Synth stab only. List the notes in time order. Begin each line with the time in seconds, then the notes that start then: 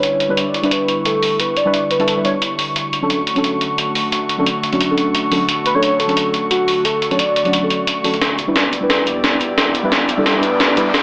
0.29 G3 D4 E4 B4
0.62 G3 D4 E4 B4
1.65 G3 D4 E4 B4
1.99 G3 D4 E4 A4
2.16 G3 D4 E4 B4
2.24 G3 D4 E4 C#5
3.01 F#3 C#4 D4 A4
3.34 F#3 C#4 D4 A4
4.38 F#3 C#4 D4 A4
4.72 F#3 C#4 D4 F#4
4.88 F#3 C#4 D4 A4
5.31 F#3 C#4 D4 A4
5.74 F#3 C#4 D4 A4
6.07 F#3 C#4 D4 A4
7.10 F#3 C#4 D4 A4
7.44 F#3 C#4 D4 F#4
7.60 F#3 C#4 D4 A4
8.03 F#3 C#4 D4 A4
8.47 G3 D4 E4 B4
8.80 G3 D4 E4 B4
9.83 G3 D4 E4 B4
10.17 G3 D4 E4 A4
10.33 G3 D4 E4 B4
10.76 G3 D4 E4 B4